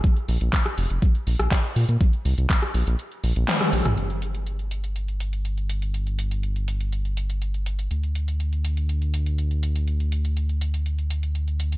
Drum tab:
HH |xxoxxxoxxxoxxxox|xxoxxxoxxxoxxxox|xxxxxxxxxxxxxxxx|xxxxxxxxxxxxxxxx|
CP |----x-------x---|----x-------x---|----------------|----------------|
SD |-----r-----r----|-----r-------r-r|----------------|----------------|
T1 |----------------|------------oo--|----------------|----------------|
T2 |----------------|---------------o|----------------|----------------|
BD |o---o---o---o---|o---o-----------|----------------|----------------|

HH |xxxxxxxxxxxxxxxx|xxxxxxxxxxxxxxxx|
CP |----------------|----------------|
SD |----------------|----------------|
T1 |----------------|----------------|
T2 |----------------|----------------|
BD |----------------|----------------|